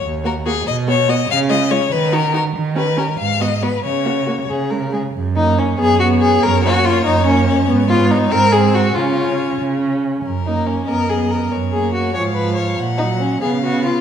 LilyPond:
<<
  \new Staff \with { instrumentName = "Violin" } { \time 6/8 \key fis \major \tempo 4. = 94 r8 ais'8 gis'8 dis''8 cis''8 dis''8 | eis''8 dis''8 cis''8 b'8 ais'8 ais'8 | r8 b'8 ais'8 eis''8 dis''8 b'8 | cis''4. r4. |
r4. cis''4.~ | cis''2.~ | cis''4. bis'4. | cis''2~ cis''16 r8. |
ais'4. dis''4. | cis''4. eis''4. | fis''4. eis''4. | }
  \new Staff \with { instrumentName = "Violin" } { \time 6/8 \key fis \major r8 fis'8 fis'8 r8 fis'8 fis'8 | r8 eis'8 eis'8 r8 fis'8 fis'8 | r8 g'8 g'8 r8 fis'8 fis'8 | r8 fis'8 fis'8 gis'8 ais'8 gis'8 |
r8 dis'8 cis'8 gis'8 fis'8 gis'8 | ais'8 fis'8 eis'8 dis'8 cis'8 cis'8 | r8 eis'8 dis'8 ais'8 gis'8 fis'8 | eis'4. r4. |
r8 dis'8 cis'8 ais'8 gis'8 ais'8 | r8 gis'8 fis'8 cis''8 b'8 cis''8 | r8 dis'8 cis'8 gis'8 fis'8 eis'8 | }
  \new Staff \with { instrumentName = "Viola" } { \time 6/8 \key fis \major r8 ais8 ais8 r8 b8 b8 | r8 gis8 gis8 r8 dis'8 dis'8 | r8 cis'8 cis'8 r8 b8 b8 | r8 ais8 ais8 r8 gis8 gis8 |
r8 ais4 b8 b4 | r8 ais4. ais4 | b8 b4 bis8 bis4 | cis'8 cis'4. cis'4 |
r8 ais4 b8 b4 | r8 ais4 eis8 eis4 | r8 fis4 b8 b4 | }
  \new Staff \with { instrumentName = "Cello" } { \clef bass \time 6/8 \key fis \major dis,4. b,4. | cis4. dis4. | dis4. gis,4. | cis4. cis4. |
fis,4. fis,4. | fis,4. fis,4. | gis,4. gis,4. | cis4. cis4. |
fis,4. fis,4. | fis,4. gis,4. | ais,4. cis4. | }
>>